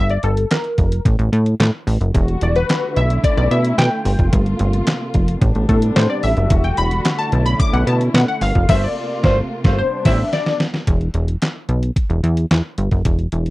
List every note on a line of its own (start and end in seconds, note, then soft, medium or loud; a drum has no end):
0.00 0.18 G1 loud
0.00 0.11 E5 loud
0.10 0.24 D5 medium
0.10 closed hi-hat soft
0.23 0.46 G1 loud
0.23 0.52 A4 medium
0.23 closed hi-hat medium
0.37 closed hi-hat soft
0.51 1.02 A#4 medium
0.51 snare loud
0.51 clap medium
0.51 closed hi-hat medium
0.64 closed hi-hat soft
0.78 1.00 F1 medium
0.78 kick medium
0.78 closed hi-hat medium
0.92 closed hi-hat medium
1.05 1.16 A1 loud
1.05 kick loud
1.05 closed hi-hat medium
1.19 1.30 A1 loud
1.19 closed hi-hat soft
1.33 1.55 A2 loud
1.33 closed hi-hat medium
1.46 closed hi-hat medium
1.60 1.71 A2 loud
1.60 snare loud
1.60 clap loud
1.60 closed hi-hat loud
1.87 1.98 A1 loud
1.87 open hi-hat medium
2.01 2.12 F#1 medium
2.01 closed hi-hat soft
2.15 2.37 E1 loud
2.15 4.04 D3 medium
2.15 2.96 G3 medium
2.15 5.39 A3 medium
2.15 2.96 F#4 medium
2.15 kick loud
2.15 closed hi-hat medium
2.28 closed hi-hat soft
2.41 2.64 E1 loud
2.41 2.56 D5 medium
2.41 closed hi-hat medium
2.56 2.98 B4 medium
2.56 closed hi-hat soft
2.69 snare loud
2.69 clap medium
2.69 closed hi-hat medium
2.96 3.19 B1 loud
2.96 4.04 C#4 medium
2.96 4.04 E4 medium
2.96 3.22 E5 loud
2.96 closed hi-hat medium
3.10 closed hi-hat soft
3.24 3.36 D5 medium
3.24 kick loud
3.24 closed hi-hat medium
3.37 3.48 B1 loud
3.37 3.51 D5 medium
3.37 closed hi-hat soft
3.51 3.73 B2 medium
3.51 3.76 E5 medium
3.51 closed hi-hat medium
3.65 closed hi-hat medium
3.78 3.89 B2 medium
3.78 4.29 G5 loud
3.78 snare loud
3.78 clap loud
3.78 closed hi-hat loud
4.05 4.16 G1 medium
4.05 5.40 C3 medium
4.05 5.40 A#3 medium
4.05 5.40 F4 medium
4.05 open hi-hat medium
4.19 4.30 F1 medium
4.19 kick medium
4.19 closed hi-hat soft
4.33 4.55 G1 loud
4.33 kick loud
4.33 closed hi-hat loud
4.46 closed hi-hat soft
4.59 4.82 G1 loud
4.59 closed hi-hat medium
4.73 closed hi-hat soft
4.87 snare loud
4.87 clap medium
4.87 closed hi-hat medium
5.14 5.37 F1 medium
5.14 kick medium
5.14 closed hi-hat medium
5.28 closed hi-hat medium
5.41 5.53 A1 loud
5.41 6.49 C3 medium
5.41 7.30 G3 medium
5.41 6.49 B3 medium
5.41 6.49 D4 medium
5.41 kick loud
5.41 closed hi-hat medium
5.55 5.67 A1 loud
5.55 closed hi-hat soft
5.69 5.91 A2 loud
5.69 5.94 A4 medium
5.69 kick loud
5.69 closed hi-hat medium
5.82 closed hi-hat medium
5.96 6.08 A2 loud
5.96 6.10 C5 medium
5.96 snare loud
5.96 clap loud
5.96 closed hi-hat medium
6.10 6.24 D5 medium
6.23 6.35 A1 medium
6.23 6.66 E5 loud
6.23 open hi-hat medium
6.37 6.48 F#1 loud
6.37 closed hi-hat soft
6.50 6.73 E1 loud
6.50 8.39 D3 medium
6.50 9.74 A3 medium
6.50 7.31 F#4 medium
6.50 kick loud
6.50 closed hi-hat loud
6.64 6.78 G5 medium
6.64 closed hi-hat soft
6.77 7.00 E1 loud
6.77 7.20 B5 loud
6.77 closed hi-hat medium
6.91 closed hi-hat soft
7.05 snare loud
7.05 clap medium
7.05 closed hi-hat loud
7.19 7.47 A5 loud
7.32 7.55 B1 loud
7.32 8.40 C#4 medium
7.32 8.41 E4 medium
7.32 closed hi-hat medium
7.46 7.60 B5 loud
7.46 closed hi-hat medium
7.60 7.74 D6 loud
7.60 kick loud
7.60 closed hi-hat medium
7.73 7.85 B1 loud
7.73 7.88 F#5 medium
7.73 closed hi-hat soft
7.87 8.09 B2 loud
7.87 7.99 A5 medium
7.87 closed hi-hat medium
8.01 closed hi-hat medium
8.14 8.25 B2 loud
8.14 8.21 F#5 loud
8.14 snare loud
8.14 clap loud
8.14 closed hi-hat loud
8.28 8.42 F#5 medium
8.41 8.53 G1 loud
8.41 10.85 C3 medium
8.41 9.77 A#3 medium
8.41 9.77 F4 medium
8.41 8.70 F5 loud
8.41 open hi-hat medium
8.55 8.66 F1 loud
8.55 kick medium
8.55 closed hi-hat soft
8.69 8.87 G1 loud
8.69 8.83 A3 loud
8.69 8.83 F4 medium
8.69 8.84 C5 loud
8.69 8.83 E5 loud
8.69 kick loud
8.69 snare loud
8.69 crash medium
8.84 9.34 D5 medium
9.23 9.42 G1 medium
9.23 9.38 A3 loud
9.23 9.38 F4 loud
9.23 9.38 C5 loud
9.23 kick loud
9.23 snare loud
9.64 9.83 G1 medium
9.64 9.79 A3 loud
9.64 9.79 F4 loud
9.64 9.79 C5 loud
9.64 kick loud
9.64 snare loud
9.78 10.86 G3 medium
9.78 10.86 B3 medium
9.78 10.86 D4 medium
9.78 10.06 C5 loud
10.05 10.24 A1 loud
10.05 10.19 G3 medium
10.05 10.19 E4 loud
10.05 10.19 C5 medium
10.05 10.34 E5 loud
10.05 kick loud
10.05 snare loud
10.05 crash medium
10.33 10.58 D5 loud
10.33 snare medium
10.46 snare medium
10.60 snare loud
10.74 snare medium
10.87 11.09 E1 loud
10.87 kick loud
10.87 closed hi-hat loud
11.01 closed hi-hat soft
11.14 11.37 E1 loud
11.14 closed hi-hat medium
11.28 closed hi-hat soft
11.42 snare loud
11.42 clap medium
11.42 closed hi-hat medium
11.69 11.91 B1 medium
11.69 closed hi-hat medium
11.83 closed hi-hat soft
11.96 kick loud
11.96 closed hi-hat medium
12.10 12.21 E1 loud
12.10 closed hi-hat soft
12.23 12.46 E2 loud
12.23 closed hi-hat medium
12.37 closed hi-hat medium
12.51 12.62 E2 medium
12.51 snare loud
12.51 clap medium
12.51 closed hi-hat medium
12.78 12.89 G1 medium
12.78 closed hi-hat medium
12.91 13.03 F#1 medium
12.91 kick medium
12.91 closed hi-hat soft
13.05 13.28 E1 loud
13.05 kick loud
13.05 closed hi-hat loud
13.19 closed hi-hat soft
13.32 13.50 E1 medium
13.32 closed hi-hat medium
13.46 closed hi-hat soft